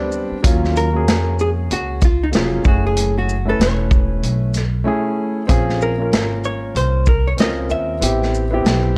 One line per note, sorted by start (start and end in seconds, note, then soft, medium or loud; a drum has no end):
0.00 0.29 D2 medium
0.00 0.35 G3 medium
0.00 0.36 B3 medium
0.00 0.37 C4 medium
0.00 0.37 D4 medium
0.12 shaker soft
0.31 muted upright bass stroke medium
0.42 1.07 D#2 loud
0.42 0.85 F#3 medium
0.42 0.86 A#3 medium
0.42 0.86 C#4 medium
0.42 0.87 F4 loud
0.42 kick loud
0.42 closed hi-hat loud
0.64 snare soft
0.76 1.36 A#4 medium
0.76 closed hi-hat soft
0.76 shaker soft
0.93 1.99 A#3 medium
0.93 1.99 C#4 medium
0.93 1.98 F#4 medium
0.93 2.00 G#4 medium
1.07 1.67 F2 medium
1.07 snare loud
1.07 closed hi-hat medium
1.39 1.49 G#4 medium
1.39 shaker soft
1.70 2.30 C#2 medium
1.70 2.01 F#4 medium
1.70 closed hi-hat medium
2.01 2.23 F4 medium
2.01 kick medium
2.01 closed hi-hat medium
2.01 shaker soft
2.23 2.28 D#4 medium
2.32 2.63 F1 medium
2.32 2.64 F#3 medium
2.32 2.65 A#3 medium
2.32 2.62 C#4 medium
2.32 2.65 G#4 medium
2.32 snare loud
2.32 closed hi-hat medium
2.36 2.67 F4 medium
2.63 3.56 F#1 medium
2.63 3.32 A3 medium
2.63 3.32 C#4 medium
2.63 3.33 E4 medium
2.63 3.33 G#4 medium
2.63 kick loud
2.63 shaker medium
2.68 2.86 F#4 medium
2.87 3.15 G#4 medium
2.97 closed hi-hat loud
3.18 3.49 F#4 medium
3.29 shaker soft
3.45 4.51 A3 medium
3.45 4.51 C#4 medium
3.45 4.52 E4 medium
3.45 4.52 B4 medium
3.49 3.61 A4 medium
3.59 4.20 E1 medium
3.59 4.52 C#5 medium
3.59 snare loud
3.59 closed hi-hat medium
3.91 kick medium
3.91 shaker soft
4.23 4.83 B1 medium
4.23 closed hi-hat medium
4.54 snare soft
4.54 closed hi-hat medium
4.54 shaker soft
4.84 5.41 A3 medium
4.84 5.41 C#4 medium
4.84 5.42 E4 medium
4.84 5.42 G#4 medium
5.47 6.09 A#1 loud
5.47 5.90 C4 medium
5.47 5.91 C#4 medium
5.47 5.91 F4 medium
5.47 5.92 G#4 loud
5.47 kick loud
5.47 closed hi-hat loud
5.69 snare soft
5.81 6.47 A#4 medium
5.81 shaker soft
5.98 7.03 A#3 medium
5.98 7.04 C#4 medium
5.98 7.04 F4 medium
5.98 7.05 A#4 medium
6.12 6.72 G#1 medium
6.12 snare loud
6.12 closed hi-hat medium
6.44 6.77 C#5 medium
6.44 shaker soft
6.75 7.35 C2 medium
6.75 7.06 C5 medium
6.75 closed hi-hat medium
7.06 7.28 A#4 medium
7.06 kick medium
7.06 shaker soft
7.27 7.32 C#5 medium
7.37 7.69 C#2 medium
7.37 7.93 C4 medium
7.37 7.94 C#4 medium
7.37 7.94 F4 medium
7.37 7.95 A#4 medium
7.37 7.69 D#5 medium
7.37 snare loud
7.37 closed hi-hat medium
7.70 8.00 D#2 medium
7.70 8.98 E5 loud
7.70 shaker soft
8.00 8.62 A1 loud
8.00 8.43 B3 medium
8.00 8.43 C4 medium
8.00 8.44 E4 medium
8.00 8.44 G4 medium
8.00 closed hi-hat loud
8.22 snare soft
8.34 shaker soft
8.51 8.98 B3 medium
8.51 8.98 C4 medium
8.51 8.98 E4 medium
8.51 8.98 G4 medium
8.65 8.98 B1 medium
8.65 snare loud
8.65 closed hi-hat medium